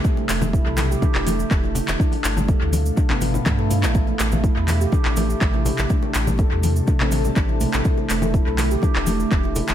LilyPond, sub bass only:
\new Staff \with { instrumentName = "Sub bass" } { \clef bass \time 4/4 \key a \minor \tempo 4 = 123 r8 e,,8 r16 b,,8 r8 e,,8 r16 e,,8 r16 e,,16 | r8 g,,8 r16 d,8 r8 g,,8 r16 g,8. a,,16~ | a,,16 r16 a,,8 r16 e,8 r8 a,,8 r16 a,,8 r16 a,,16 | r8 a,,8 r16 e,8 r8 a,,8 r16 a,,8 r16 a,,16 |
r8 e,,8 r16 b,,8 r8 e,,8 r16 e,,8 r16 e,,16 | }